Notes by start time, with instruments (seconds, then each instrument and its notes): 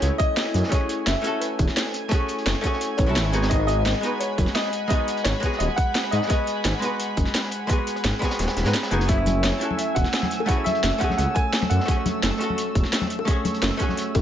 Already playing: hollow-body jazz guitar A3 C#4 F#4 G#4, analog synth pad E4 G#5, grand piano C#5
0.02 detuned saw bass C#2, closed hi-hat
0.18 grand piano D#5, kick, closed hi-hat
0.37 snare, closed hi-hat
0.46 cross-stick, snare
0.54 detuned saw bass F#2, closed hi-hat
0.63 snare
0.69 hollow-body jazz guitar A3 C#4, grand piano C#5, kick, closed hi-hat
0.73 hollow-body jazz guitar F#4 G#4
0.81 cross-stick
0.89 closed hi-hat
1.06 detuned saw bass F#1, grand piano E5, snare, closed hi-hat
1.22 hollow-body jazz guitar A3 C#4, closed hi-hat
1.26 hollow-body jazz guitar F#4 A4
1.40 grand piano B4, closed hi-hat
1.59 detuned saw bass E1, kick, closed hi-hat
1.68 snare, closed hi-hat
1.77 snare, closed hi-hat
1.86 snare
1.94 closed hi-hat
2.09 hollow-body jazz guitar A3 C#4, kick, closed hi-hat
2.13 hollow-body jazz guitar F#4 G#4
2.21 cross-stick
2.28 closed hi-hat
2.38 closed hi-hat
2.46 detuned saw bass F#1, snare, closed hi-hat
2.61 hollow-body jazz guitar A3 C#4, kick, closed hi-hat
2.65 hollow-body jazz guitar F#4 G#4
2.73 snare
2.81 closed hi-hat
2.97 detuned saw bass A1, grand piano C#5, kick, closed hi-hat
3.06 detuned saw bass C#2, hollow-body jazz guitar A3 C#4 E4 F#4 A4
3.15 detuned saw bass G#1, snare, closed hi-hat
3.25 cross-stick, snare
3.32 hollow-body jazz guitar G#3 B3 D#4 F#4 G#4, analog synth pad F#5 B5, closed hi-hat
3.43 snare, closed hi-hat
3.48 hollow-body jazz guitar G#3 B3 D#4, grand piano D#5, kick, closed hi-hat
3.53 hollow-body jazz guitar F#4 G#4
3.60 cross-stick
3.67 grand piano D#5, closed hi-hat
3.86 detuned saw bass G#1, snare, closed hi-hat
4.01 hollow-body jazz guitar G#3 B3 D#4, closed hi-hat
4.05 hollow-body jazz guitar F#4 B4
4.20 grand piano C#5, closed hi-hat
4.38 detuned saw bass F#1, kick, closed hi-hat
4.47 snare, closed hi-hat
4.54 grand piano D#5, snare, closed hi-hat
4.64 snare
4.73 closed hi-hat
4.88 hollow-body jazz guitar G#3 B3 D#4, grand piano D#5, kick, closed hi-hat
4.92 hollow-body jazz guitar F#4 G#4
4.99 cross-stick
5.08 closed hi-hat
5.17 closed hi-hat
5.24 detuned saw bass G#1, grand piano C#5, snare, closed hi-hat
5.40 hollow-body jazz guitar G#3 B3, kick, closed hi-hat
5.44 hollow-body jazz guitar F#4 G#4
5.52 snare
5.59 detuned saw bass D#1, grand piano D#5, closed hi-hat
5.76 grand piano F#5, kick, closed hi-hat
5.95 snare, closed hi-hat
6.04 cross-stick, snare
6.11 detuned saw bass G#2, grand piano D#5, closed hi-hat
6.22 snare
6.27 hollow-body jazz guitar G#3 B3, grand piano D#5, kick, closed hi-hat
6.31 hollow-body jazz guitar F#4 G#4
6.39 cross-stick
6.47 closed hi-hat
6.65 detuned saw bass G#1, snare, closed hi-hat
6.79 hollow-body jazz guitar G#3 B3, closed hi-hat
6.84 hollow-body jazz guitar F#4 B4
7.00 closed hi-hat
7.17 detuned saw bass F#1, kick, closed hi-hat
7.26 snare, closed hi-hat
7.35 snare, closed hi-hat
7.44 snare
7.51 closed hi-hat
7.67 hollow-body jazz guitar G#3 B3, kick, closed hi-hat
7.71 hollow-body jazz guitar F#4 G#4
7.79 cross-stick
7.87 closed hi-hat
7.96 cross-stick, closed hi-hat
8.04 detuned saw bass G#1, snare, closed hi-hat
8.19 hollow-body jazz guitar G#3 B3, kick, snare, closed hi-hat
8.23 hollow-body jazz guitar F#4 G#4
8.31 snare, closed hi-hat
8.39 detuned saw bass D#1, snare, closed hi-hat
8.48 snare, closed hi-hat
8.56 detuned saw bass D#1, snare, closed hi-hat
8.64 detuned saw bass G#2, hollow-body jazz guitar G#3 B3 D#4 F#4 B4, snare, closed hi-hat
8.74 snare, closed hi-hat
8.83 cross-stick, snare, closed hi-hat
8.91 detuned saw bass F#1, hollow-body jazz guitar G#3 B3 D#4 F#4 G#4, closed hi-hat
9.01 closed hi-hat
9.06 hollow-body jazz guitar A3 C#4 E4, analog synth pad A3 G#5 E6, grand piano E5, kick, closed hi-hat
9.11 hollow-body jazz guitar F#4 G#4
9.18 cross-stick
9.26 closed hi-hat, high conga
9.43 detuned saw bass F#1, grand piano C#5, snare, closed hi-hat
9.59 hollow-body jazz guitar A3 C#4 E4, closed hi-hat
9.63 hollow-body jazz guitar F#4 A4
9.71 high conga
9.77 grand piano E5, closed hi-hat
9.95 detuned saw bass E1, grand piano F#5, kick, closed hi-hat
10.05 snare, closed hi-hat
10.14 snare, closed hi-hat
10.23 snare, high conga
10.31 closed hi-hat
10.40 high bongo
10.46 hollow-body jazz guitar A3 C#4 E4, grand piano F#5, kick, closed hi-hat
10.50 hollow-body jazz guitar F#4 G#4
10.58 cross-stick
10.64 grand piano E5, closed hi-hat, high conga
10.75 closed hi-hat
10.83 detuned saw bass F#1, snare, closed hi-hat
10.98 hollow-body jazz guitar A3 C#4, grand piano F#5, kick, closed hi-hat
11.03 hollow-body jazz guitar F#4 G#4
11.10 snare, high conga
11.17 detuned saw bass C#2, grand piano F#5, closed hi-hat
11.35 grand piano G#5, kick, closed hi-hat, high bongo
11.53 snare, closed hi-hat
11.62 cross-stick, snare, high conga
11.70 detuned saw bass F#2, grand piano F#5, closed hi-hat
11.79 snare, high bongo
11.86 hollow-body jazz guitar A3 C#4, kick, closed hi-hat
11.90 hollow-body jazz guitar F#4 G#4
11.97 cross-stick
12.06 closed hi-hat, high conga
12.23 detuned saw bass F#1, snare, closed hi-hat
12.38 hollow-body jazz guitar A3 C#4, closed hi-hat
12.42 hollow-body jazz guitar F#4 A4
12.50 high conga
12.58 closed hi-hat
12.75 detuned saw bass E1, kick, closed hi-hat
12.84 snare, closed hi-hat
12.93 snare, closed hi-hat
13.01 snare, high conga
13.10 closed hi-hat
13.19 high bongo
13.25 hollow-body jazz guitar A3 C#4, kick, closed hi-hat
13.29 hollow-body jazz guitar F#4 G#4
13.37 cross-stick
13.45 closed hi-hat, high conga
13.54 closed hi-hat
13.62 detuned saw bass F#1, snare, closed hi-hat
13.77 hollow-body jazz guitar A3 C#4, kick, closed hi-hat
13.81 hollow-body jazz guitar F#4 G#4
13.89 snare, high conga
13.97 closed hi-hat
14.15 detuned saw bass A1, kick, closed hi-hat, high bongo